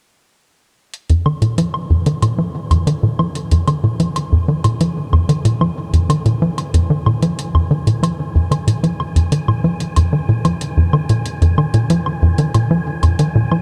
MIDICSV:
0, 0, Header, 1, 4, 480
1, 0, Start_track
1, 0, Key_signature, -4, "minor"
1, 0, Tempo, 645161
1, 696, Time_signature, 4, 2, 24, 8
1, 10132, End_track
2, 0, Start_track
2, 0, Title_t, "Synth texture"
2, 0, Program_c, 0, 99
2, 699, Note_on_c, 0, 80, 77
2, 10132, Note_off_c, 0, 80, 0
2, 10132, End_track
3, 0, Start_track
3, 0, Title_t, "Analog synth bass"
3, 0, Program_c, 1, 38
3, 816, Note_on_c, 1, 41, 76
3, 930, Note_off_c, 1, 41, 0
3, 935, Note_on_c, 1, 51, 73
3, 1017, Note_off_c, 1, 51, 0
3, 1054, Note_on_c, 1, 46, 73
3, 1169, Note_off_c, 1, 46, 0
3, 1175, Note_on_c, 1, 53, 77
3, 1257, Note_off_c, 1, 53, 0
3, 1415, Note_on_c, 1, 41, 72
3, 1529, Note_off_c, 1, 41, 0
3, 1535, Note_on_c, 1, 51, 73
3, 1617, Note_off_c, 1, 51, 0
3, 1654, Note_on_c, 1, 46, 79
3, 1769, Note_off_c, 1, 46, 0
3, 1774, Note_on_c, 1, 53, 70
3, 1856, Note_off_c, 1, 53, 0
3, 2013, Note_on_c, 1, 41, 75
3, 2129, Note_off_c, 1, 41, 0
3, 2134, Note_on_c, 1, 51, 78
3, 2216, Note_off_c, 1, 51, 0
3, 2254, Note_on_c, 1, 46, 73
3, 2369, Note_off_c, 1, 46, 0
3, 2375, Note_on_c, 1, 53, 70
3, 2457, Note_off_c, 1, 53, 0
3, 2615, Note_on_c, 1, 41, 78
3, 2729, Note_off_c, 1, 41, 0
3, 2735, Note_on_c, 1, 51, 73
3, 2817, Note_off_c, 1, 51, 0
3, 2854, Note_on_c, 1, 46, 73
3, 2969, Note_off_c, 1, 46, 0
3, 2975, Note_on_c, 1, 53, 77
3, 3057, Note_off_c, 1, 53, 0
3, 3216, Note_on_c, 1, 41, 71
3, 3330, Note_off_c, 1, 41, 0
3, 3335, Note_on_c, 1, 51, 72
3, 3417, Note_off_c, 1, 51, 0
3, 3454, Note_on_c, 1, 46, 70
3, 3569, Note_off_c, 1, 46, 0
3, 3576, Note_on_c, 1, 53, 75
3, 3657, Note_off_c, 1, 53, 0
3, 3815, Note_on_c, 1, 41, 73
3, 3929, Note_off_c, 1, 41, 0
3, 3934, Note_on_c, 1, 51, 73
3, 4016, Note_off_c, 1, 51, 0
3, 4053, Note_on_c, 1, 46, 76
3, 4168, Note_off_c, 1, 46, 0
3, 4173, Note_on_c, 1, 53, 70
3, 4256, Note_off_c, 1, 53, 0
3, 4414, Note_on_c, 1, 41, 69
3, 4529, Note_off_c, 1, 41, 0
3, 4533, Note_on_c, 1, 51, 77
3, 4616, Note_off_c, 1, 51, 0
3, 4653, Note_on_c, 1, 46, 75
3, 4769, Note_off_c, 1, 46, 0
3, 4775, Note_on_c, 1, 53, 72
3, 4857, Note_off_c, 1, 53, 0
3, 5014, Note_on_c, 1, 41, 79
3, 5129, Note_off_c, 1, 41, 0
3, 5133, Note_on_c, 1, 51, 69
3, 5216, Note_off_c, 1, 51, 0
3, 5255, Note_on_c, 1, 46, 72
3, 5369, Note_off_c, 1, 46, 0
3, 5375, Note_on_c, 1, 53, 71
3, 5457, Note_off_c, 1, 53, 0
3, 5614, Note_on_c, 1, 41, 70
3, 5729, Note_off_c, 1, 41, 0
3, 5733, Note_on_c, 1, 51, 70
3, 5816, Note_off_c, 1, 51, 0
3, 5854, Note_on_c, 1, 46, 74
3, 5967, Note_off_c, 1, 46, 0
3, 5972, Note_on_c, 1, 53, 79
3, 6055, Note_off_c, 1, 53, 0
3, 6214, Note_on_c, 1, 41, 70
3, 6329, Note_off_c, 1, 41, 0
3, 6332, Note_on_c, 1, 51, 72
3, 6415, Note_off_c, 1, 51, 0
3, 6453, Note_on_c, 1, 46, 74
3, 6568, Note_off_c, 1, 46, 0
3, 6572, Note_on_c, 1, 53, 75
3, 6655, Note_off_c, 1, 53, 0
3, 6813, Note_on_c, 1, 41, 75
3, 6928, Note_off_c, 1, 41, 0
3, 6933, Note_on_c, 1, 51, 76
3, 7016, Note_off_c, 1, 51, 0
3, 7054, Note_on_c, 1, 46, 70
3, 7169, Note_off_c, 1, 46, 0
3, 7173, Note_on_c, 1, 53, 73
3, 7256, Note_off_c, 1, 53, 0
3, 7416, Note_on_c, 1, 41, 80
3, 7530, Note_off_c, 1, 41, 0
3, 7534, Note_on_c, 1, 51, 70
3, 7616, Note_off_c, 1, 51, 0
3, 7654, Note_on_c, 1, 46, 76
3, 7769, Note_off_c, 1, 46, 0
3, 7774, Note_on_c, 1, 53, 71
3, 7856, Note_off_c, 1, 53, 0
3, 8014, Note_on_c, 1, 41, 72
3, 8129, Note_off_c, 1, 41, 0
3, 8133, Note_on_c, 1, 51, 73
3, 8216, Note_off_c, 1, 51, 0
3, 8255, Note_on_c, 1, 46, 70
3, 8369, Note_off_c, 1, 46, 0
3, 8494, Note_on_c, 1, 41, 77
3, 8609, Note_off_c, 1, 41, 0
3, 8615, Note_on_c, 1, 51, 74
3, 8697, Note_off_c, 1, 51, 0
3, 8733, Note_on_c, 1, 46, 76
3, 8849, Note_off_c, 1, 46, 0
3, 8854, Note_on_c, 1, 53, 78
3, 8936, Note_off_c, 1, 53, 0
3, 9094, Note_on_c, 1, 41, 69
3, 9209, Note_off_c, 1, 41, 0
3, 9214, Note_on_c, 1, 51, 75
3, 9296, Note_off_c, 1, 51, 0
3, 9334, Note_on_c, 1, 46, 76
3, 9449, Note_off_c, 1, 46, 0
3, 9454, Note_on_c, 1, 53, 73
3, 9536, Note_off_c, 1, 53, 0
3, 9695, Note_on_c, 1, 41, 72
3, 9809, Note_off_c, 1, 41, 0
3, 9815, Note_on_c, 1, 51, 75
3, 9897, Note_off_c, 1, 51, 0
3, 9935, Note_on_c, 1, 46, 72
3, 10049, Note_off_c, 1, 46, 0
3, 10056, Note_on_c, 1, 53, 71
3, 10132, Note_off_c, 1, 53, 0
3, 10132, End_track
4, 0, Start_track
4, 0, Title_t, "Drums"
4, 696, Note_on_c, 9, 42, 55
4, 771, Note_off_c, 9, 42, 0
4, 815, Note_on_c, 9, 42, 33
4, 889, Note_off_c, 9, 42, 0
4, 936, Note_on_c, 9, 77, 41
4, 1010, Note_off_c, 9, 77, 0
4, 1056, Note_on_c, 9, 42, 47
4, 1130, Note_off_c, 9, 42, 0
4, 1176, Note_on_c, 9, 42, 60
4, 1250, Note_off_c, 9, 42, 0
4, 1294, Note_on_c, 9, 77, 42
4, 1369, Note_off_c, 9, 77, 0
4, 1534, Note_on_c, 9, 42, 45
4, 1609, Note_off_c, 9, 42, 0
4, 1655, Note_on_c, 9, 42, 59
4, 1655, Note_on_c, 9, 77, 41
4, 1729, Note_off_c, 9, 42, 0
4, 1729, Note_off_c, 9, 77, 0
4, 2016, Note_on_c, 9, 42, 47
4, 2016, Note_on_c, 9, 77, 43
4, 2091, Note_off_c, 9, 42, 0
4, 2091, Note_off_c, 9, 77, 0
4, 2137, Note_on_c, 9, 42, 56
4, 2211, Note_off_c, 9, 42, 0
4, 2375, Note_on_c, 9, 77, 41
4, 2449, Note_off_c, 9, 77, 0
4, 2495, Note_on_c, 9, 42, 47
4, 2569, Note_off_c, 9, 42, 0
4, 2615, Note_on_c, 9, 42, 60
4, 2689, Note_off_c, 9, 42, 0
4, 2734, Note_on_c, 9, 42, 35
4, 2734, Note_on_c, 9, 77, 45
4, 2809, Note_off_c, 9, 42, 0
4, 2809, Note_off_c, 9, 77, 0
4, 2975, Note_on_c, 9, 42, 49
4, 3049, Note_off_c, 9, 42, 0
4, 3096, Note_on_c, 9, 42, 63
4, 3096, Note_on_c, 9, 77, 42
4, 3170, Note_off_c, 9, 42, 0
4, 3170, Note_off_c, 9, 77, 0
4, 3454, Note_on_c, 9, 42, 50
4, 3454, Note_on_c, 9, 77, 43
4, 3529, Note_off_c, 9, 42, 0
4, 3529, Note_off_c, 9, 77, 0
4, 3576, Note_on_c, 9, 42, 60
4, 3650, Note_off_c, 9, 42, 0
4, 3817, Note_on_c, 9, 77, 43
4, 3891, Note_off_c, 9, 77, 0
4, 3937, Note_on_c, 9, 42, 52
4, 4012, Note_off_c, 9, 42, 0
4, 4056, Note_on_c, 9, 42, 56
4, 4130, Note_off_c, 9, 42, 0
4, 4175, Note_on_c, 9, 77, 42
4, 4250, Note_off_c, 9, 77, 0
4, 4417, Note_on_c, 9, 42, 49
4, 4491, Note_off_c, 9, 42, 0
4, 4537, Note_on_c, 9, 42, 60
4, 4537, Note_on_c, 9, 77, 42
4, 4611, Note_off_c, 9, 42, 0
4, 4611, Note_off_c, 9, 77, 0
4, 4655, Note_on_c, 9, 42, 35
4, 4729, Note_off_c, 9, 42, 0
4, 4895, Note_on_c, 9, 42, 49
4, 4895, Note_on_c, 9, 77, 40
4, 4970, Note_off_c, 9, 42, 0
4, 4970, Note_off_c, 9, 77, 0
4, 5016, Note_on_c, 9, 42, 63
4, 5090, Note_off_c, 9, 42, 0
4, 5255, Note_on_c, 9, 77, 41
4, 5330, Note_off_c, 9, 77, 0
4, 5375, Note_on_c, 9, 42, 49
4, 5450, Note_off_c, 9, 42, 0
4, 5496, Note_on_c, 9, 42, 62
4, 5571, Note_off_c, 9, 42, 0
4, 5616, Note_on_c, 9, 77, 43
4, 5690, Note_off_c, 9, 77, 0
4, 5856, Note_on_c, 9, 42, 51
4, 5931, Note_off_c, 9, 42, 0
4, 5978, Note_on_c, 9, 42, 60
4, 5978, Note_on_c, 9, 77, 42
4, 6052, Note_off_c, 9, 42, 0
4, 6052, Note_off_c, 9, 77, 0
4, 6337, Note_on_c, 9, 42, 50
4, 6337, Note_on_c, 9, 77, 40
4, 6411, Note_off_c, 9, 42, 0
4, 6411, Note_off_c, 9, 77, 0
4, 6456, Note_on_c, 9, 42, 63
4, 6530, Note_off_c, 9, 42, 0
4, 6576, Note_on_c, 9, 42, 35
4, 6650, Note_off_c, 9, 42, 0
4, 6696, Note_on_c, 9, 77, 41
4, 6770, Note_off_c, 9, 77, 0
4, 6817, Note_on_c, 9, 42, 50
4, 6891, Note_off_c, 9, 42, 0
4, 6934, Note_on_c, 9, 42, 64
4, 7009, Note_off_c, 9, 42, 0
4, 7055, Note_on_c, 9, 77, 40
4, 7130, Note_off_c, 9, 77, 0
4, 7294, Note_on_c, 9, 42, 49
4, 7368, Note_off_c, 9, 42, 0
4, 7413, Note_on_c, 9, 42, 62
4, 7413, Note_on_c, 9, 77, 39
4, 7488, Note_off_c, 9, 42, 0
4, 7488, Note_off_c, 9, 77, 0
4, 7774, Note_on_c, 9, 42, 50
4, 7774, Note_on_c, 9, 77, 39
4, 7849, Note_off_c, 9, 42, 0
4, 7849, Note_off_c, 9, 77, 0
4, 7895, Note_on_c, 9, 42, 60
4, 7969, Note_off_c, 9, 42, 0
4, 8134, Note_on_c, 9, 77, 38
4, 8208, Note_off_c, 9, 77, 0
4, 8253, Note_on_c, 9, 42, 48
4, 8328, Note_off_c, 9, 42, 0
4, 8374, Note_on_c, 9, 42, 57
4, 8449, Note_off_c, 9, 42, 0
4, 8496, Note_on_c, 9, 42, 33
4, 8571, Note_off_c, 9, 42, 0
4, 8615, Note_on_c, 9, 77, 38
4, 8690, Note_off_c, 9, 77, 0
4, 8733, Note_on_c, 9, 42, 47
4, 8808, Note_off_c, 9, 42, 0
4, 8853, Note_on_c, 9, 42, 60
4, 8928, Note_off_c, 9, 42, 0
4, 8974, Note_on_c, 9, 77, 37
4, 9048, Note_off_c, 9, 77, 0
4, 9212, Note_on_c, 9, 42, 48
4, 9287, Note_off_c, 9, 42, 0
4, 9333, Note_on_c, 9, 42, 56
4, 9333, Note_on_c, 9, 77, 37
4, 9407, Note_off_c, 9, 42, 0
4, 9407, Note_off_c, 9, 77, 0
4, 9694, Note_on_c, 9, 42, 50
4, 9694, Note_on_c, 9, 77, 40
4, 9768, Note_off_c, 9, 42, 0
4, 9768, Note_off_c, 9, 77, 0
4, 9814, Note_on_c, 9, 42, 59
4, 9889, Note_off_c, 9, 42, 0
4, 10056, Note_on_c, 9, 77, 38
4, 10130, Note_off_c, 9, 77, 0
4, 10132, End_track
0, 0, End_of_file